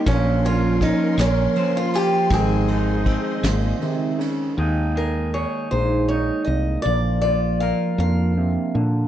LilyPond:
<<
  \new Staff \with { instrumentName = "Steel-string acoustic guitar" } { \time 6/8 \key ees \mixolydian \tempo 4. = 53 des'8 f'8 ees'8 des'8. f'16 g'8 | aes'2~ aes'8 r8 | r8 bes'8 des''8 c''8 des''8 ees''8 | d''8 d''8 f''8 f''4 r8 | }
  \new Staff \with { instrumentName = "String section" } { \time 6/8 \key ees \mixolydian << { c'''2.~ | c'''2. | r2. | r2. | } \\ { <des' bes'>2. | <aes' ees''>2. | r2. | r2. | } >> }
  \new Staff \with { instrumentName = "Clean electric guitar" } { \time 6/8 \key ees \mixolydian << { des'8 des'8 des'4 c''8 f'8 | c'8 ees'8 c'2 | <aes ees' aes'>8 aes'8 aes'4 ees'4 | r8 f'8 bes'2 | } \\ { bes,4. bes4. | aes,4. bes,8 c8 des8 | ees4. aes4. | bes,4. bes,8 c8 d8 | } >> }
  \new Staff \with { instrumentName = "Harp" } { \time 6/8 \key ees \mixolydian f2 f4 | ees4. aes8 ees4 | bes4. <bes ees' aes'>4 bes8 | f4. <bes d' bes'>4 bes8 | }
  \new Staff \with { instrumentName = "Fretless electric bass" } { \clef bass \time 6/8 \key ees \mixolydian bes,,4. bes,,8 r4 | aes,,4. aes,,8 r4 | ees,4. bes,,4 c,8 | bes,,4. f,4 bes,8 | }
  \new DrumStaff \with { instrumentName = "Drums" } \drummode { \time 6/8 <bd cymr>8 cymr8 <bd cymr>8 <cymr sn>8 cymr8 cymr8 | <bd cymr>8 cymr8 <bd cymr>8 <cymr sn>8 cymr8 cymr8 | r4. r4. | r4. r4. | }
>>